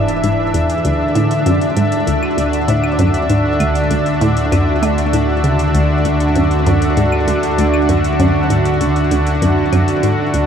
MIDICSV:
0, 0, Header, 1, 5, 480
1, 0, Start_track
1, 0, Tempo, 612245
1, 666, Time_signature, 4, 2, 24, 8
1, 8204, End_track
2, 0, Start_track
2, 0, Title_t, "Analog synth pad"
2, 0, Program_c, 0, 89
2, 0, Note_on_c, 0, 52, 86
2, 0, Note_on_c, 0, 62, 86
2, 0, Note_on_c, 0, 68, 73
2, 0, Note_on_c, 0, 76, 83
2, 665, Note_off_c, 0, 52, 0
2, 666, Note_on_c, 0, 50, 81
2, 1305, Note_off_c, 0, 68, 0
2, 1527, Note_on_c, 0, 66, 70
2, 8204, Note_off_c, 0, 50, 0
2, 8204, Note_off_c, 0, 62, 0
2, 8204, Note_off_c, 0, 66, 0
2, 8204, Note_off_c, 0, 76, 0
2, 8204, End_track
3, 0, Start_track
3, 0, Title_t, "Synth arpeggio sound"
3, 0, Program_c, 1, 84
3, 184, Note_on_c, 1, 44, 73
3, 264, Note_off_c, 1, 44, 0
3, 424, Note_on_c, 1, 40, 71
3, 556, Note_off_c, 1, 40, 0
3, 665, Note_on_c, 1, 38, 78
3, 862, Note_off_c, 1, 38, 0
3, 905, Note_on_c, 1, 45, 91
3, 1036, Note_off_c, 1, 45, 0
3, 1144, Note_on_c, 1, 42, 100
3, 1223, Note_off_c, 1, 42, 0
3, 1383, Note_on_c, 1, 44, 77
3, 1463, Note_off_c, 1, 44, 0
3, 1623, Note_on_c, 1, 38, 78
3, 1755, Note_off_c, 1, 38, 0
3, 1861, Note_on_c, 1, 38, 72
3, 2060, Note_off_c, 1, 38, 0
3, 2103, Note_on_c, 1, 45, 97
3, 2235, Note_off_c, 1, 45, 0
3, 2343, Note_on_c, 1, 42, 94
3, 2423, Note_off_c, 1, 42, 0
3, 2583, Note_on_c, 1, 44, 80
3, 2663, Note_off_c, 1, 44, 0
3, 2823, Note_on_c, 1, 38, 70
3, 2955, Note_off_c, 1, 38, 0
3, 3063, Note_on_c, 1, 38, 75
3, 3261, Note_off_c, 1, 38, 0
3, 3302, Note_on_c, 1, 45, 98
3, 3435, Note_off_c, 1, 45, 0
3, 3542, Note_on_c, 1, 42, 96
3, 3622, Note_off_c, 1, 42, 0
3, 3782, Note_on_c, 1, 57, 96
3, 3981, Note_off_c, 1, 57, 0
3, 4023, Note_on_c, 1, 45, 73
3, 4155, Note_off_c, 1, 45, 0
3, 4263, Note_on_c, 1, 49, 69
3, 4396, Note_off_c, 1, 49, 0
3, 4504, Note_on_c, 1, 38, 79
3, 4636, Note_off_c, 1, 38, 0
3, 4745, Note_on_c, 1, 38, 73
3, 4942, Note_off_c, 1, 38, 0
3, 4986, Note_on_c, 1, 42, 76
3, 5117, Note_off_c, 1, 42, 0
3, 5225, Note_on_c, 1, 42, 100
3, 5304, Note_off_c, 1, 42, 0
3, 5465, Note_on_c, 1, 44, 77
3, 5544, Note_off_c, 1, 44, 0
3, 5703, Note_on_c, 1, 38, 73
3, 5836, Note_off_c, 1, 38, 0
3, 5943, Note_on_c, 1, 38, 76
3, 6141, Note_off_c, 1, 38, 0
3, 6185, Note_on_c, 1, 42, 73
3, 6316, Note_off_c, 1, 42, 0
3, 6425, Note_on_c, 1, 42, 99
3, 6504, Note_off_c, 1, 42, 0
3, 6664, Note_on_c, 1, 44, 72
3, 6744, Note_off_c, 1, 44, 0
3, 6906, Note_on_c, 1, 38, 75
3, 7037, Note_off_c, 1, 38, 0
3, 7144, Note_on_c, 1, 38, 79
3, 7342, Note_off_c, 1, 38, 0
3, 7385, Note_on_c, 1, 42, 80
3, 7516, Note_off_c, 1, 42, 0
3, 7625, Note_on_c, 1, 42, 96
3, 7704, Note_off_c, 1, 42, 0
3, 7865, Note_on_c, 1, 44, 76
3, 7944, Note_off_c, 1, 44, 0
3, 8104, Note_on_c, 1, 38, 71
3, 8204, Note_off_c, 1, 38, 0
3, 8204, End_track
4, 0, Start_track
4, 0, Title_t, "Analog synth bass"
4, 0, Program_c, 2, 38
4, 0, Note_on_c, 2, 28, 88
4, 640, Note_off_c, 2, 28, 0
4, 665, Note_on_c, 2, 38, 86
4, 8204, Note_off_c, 2, 38, 0
4, 8204, End_track
5, 0, Start_track
5, 0, Title_t, "Drums"
5, 66, Note_on_c, 9, 42, 49
5, 144, Note_off_c, 9, 42, 0
5, 185, Note_on_c, 9, 42, 78
5, 263, Note_off_c, 9, 42, 0
5, 425, Note_on_c, 9, 42, 74
5, 504, Note_off_c, 9, 42, 0
5, 546, Note_on_c, 9, 42, 50
5, 624, Note_off_c, 9, 42, 0
5, 665, Note_on_c, 9, 42, 73
5, 743, Note_off_c, 9, 42, 0
5, 905, Note_on_c, 9, 42, 78
5, 983, Note_off_c, 9, 42, 0
5, 1026, Note_on_c, 9, 42, 51
5, 1104, Note_off_c, 9, 42, 0
5, 1146, Note_on_c, 9, 42, 73
5, 1224, Note_off_c, 9, 42, 0
5, 1265, Note_on_c, 9, 42, 36
5, 1344, Note_off_c, 9, 42, 0
5, 1384, Note_on_c, 9, 42, 76
5, 1463, Note_off_c, 9, 42, 0
5, 1505, Note_on_c, 9, 42, 50
5, 1583, Note_off_c, 9, 42, 0
5, 1625, Note_on_c, 9, 42, 77
5, 1704, Note_off_c, 9, 42, 0
5, 1746, Note_on_c, 9, 75, 73
5, 1824, Note_off_c, 9, 75, 0
5, 1866, Note_on_c, 9, 42, 72
5, 1944, Note_off_c, 9, 42, 0
5, 1986, Note_on_c, 9, 42, 49
5, 2064, Note_off_c, 9, 42, 0
5, 2103, Note_on_c, 9, 42, 79
5, 2182, Note_off_c, 9, 42, 0
5, 2223, Note_on_c, 9, 75, 71
5, 2302, Note_off_c, 9, 75, 0
5, 2343, Note_on_c, 9, 42, 74
5, 2421, Note_off_c, 9, 42, 0
5, 2463, Note_on_c, 9, 42, 51
5, 2541, Note_off_c, 9, 42, 0
5, 2584, Note_on_c, 9, 42, 74
5, 2662, Note_off_c, 9, 42, 0
5, 2824, Note_on_c, 9, 42, 76
5, 2824, Note_on_c, 9, 75, 66
5, 2902, Note_off_c, 9, 42, 0
5, 2902, Note_off_c, 9, 75, 0
5, 2943, Note_on_c, 9, 42, 49
5, 3021, Note_off_c, 9, 42, 0
5, 3063, Note_on_c, 9, 42, 75
5, 3141, Note_off_c, 9, 42, 0
5, 3183, Note_on_c, 9, 42, 35
5, 3262, Note_off_c, 9, 42, 0
5, 3303, Note_on_c, 9, 42, 75
5, 3382, Note_off_c, 9, 42, 0
5, 3424, Note_on_c, 9, 42, 50
5, 3502, Note_off_c, 9, 42, 0
5, 3546, Note_on_c, 9, 42, 74
5, 3546, Note_on_c, 9, 75, 47
5, 3624, Note_off_c, 9, 42, 0
5, 3624, Note_off_c, 9, 75, 0
5, 3785, Note_on_c, 9, 42, 74
5, 3785, Note_on_c, 9, 75, 49
5, 3863, Note_off_c, 9, 42, 0
5, 3863, Note_off_c, 9, 75, 0
5, 3905, Note_on_c, 9, 42, 50
5, 3983, Note_off_c, 9, 42, 0
5, 4025, Note_on_c, 9, 42, 81
5, 4103, Note_off_c, 9, 42, 0
5, 4265, Note_on_c, 9, 42, 75
5, 4343, Note_off_c, 9, 42, 0
5, 4384, Note_on_c, 9, 42, 51
5, 4463, Note_off_c, 9, 42, 0
5, 4504, Note_on_c, 9, 42, 70
5, 4583, Note_off_c, 9, 42, 0
5, 4744, Note_on_c, 9, 42, 71
5, 4822, Note_off_c, 9, 42, 0
5, 4864, Note_on_c, 9, 42, 48
5, 4942, Note_off_c, 9, 42, 0
5, 4982, Note_on_c, 9, 42, 69
5, 5061, Note_off_c, 9, 42, 0
5, 5104, Note_on_c, 9, 42, 34
5, 5183, Note_off_c, 9, 42, 0
5, 5225, Note_on_c, 9, 42, 75
5, 5304, Note_off_c, 9, 42, 0
5, 5345, Note_on_c, 9, 42, 49
5, 5424, Note_off_c, 9, 42, 0
5, 5465, Note_on_c, 9, 42, 72
5, 5543, Note_off_c, 9, 42, 0
5, 5585, Note_on_c, 9, 75, 68
5, 5663, Note_off_c, 9, 75, 0
5, 5705, Note_on_c, 9, 42, 73
5, 5784, Note_off_c, 9, 42, 0
5, 5826, Note_on_c, 9, 42, 49
5, 5904, Note_off_c, 9, 42, 0
5, 5946, Note_on_c, 9, 42, 76
5, 6025, Note_off_c, 9, 42, 0
5, 6065, Note_on_c, 9, 75, 69
5, 6144, Note_off_c, 9, 75, 0
5, 6185, Note_on_c, 9, 42, 74
5, 6264, Note_off_c, 9, 42, 0
5, 6307, Note_on_c, 9, 42, 49
5, 6385, Note_off_c, 9, 42, 0
5, 6426, Note_on_c, 9, 42, 69
5, 6504, Note_off_c, 9, 42, 0
5, 6666, Note_on_c, 9, 42, 72
5, 6744, Note_off_c, 9, 42, 0
5, 6785, Note_on_c, 9, 42, 46
5, 6863, Note_off_c, 9, 42, 0
5, 6905, Note_on_c, 9, 42, 70
5, 6984, Note_off_c, 9, 42, 0
5, 7025, Note_on_c, 9, 42, 33
5, 7103, Note_off_c, 9, 42, 0
5, 7145, Note_on_c, 9, 42, 71
5, 7223, Note_off_c, 9, 42, 0
5, 7265, Note_on_c, 9, 42, 46
5, 7343, Note_off_c, 9, 42, 0
5, 7386, Note_on_c, 9, 42, 71
5, 7464, Note_off_c, 9, 42, 0
5, 7625, Note_on_c, 9, 42, 67
5, 7625, Note_on_c, 9, 75, 46
5, 7704, Note_off_c, 9, 42, 0
5, 7704, Note_off_c, 9, 75, 0
5, 7745, Note_on_c, 9, 42, 47
5, 7824, Note_off_c, 9, 42, 0
5, 7865, Note_on_c, 9, 42, 75
5, 7943, Note_off_c, 9, 42, 0
5, 8105, Note_on_c, 9, 42, 71
5, 8184, Note_off_c, 9, 42, 0
5, 8204, End_track
0, 0, End_of_file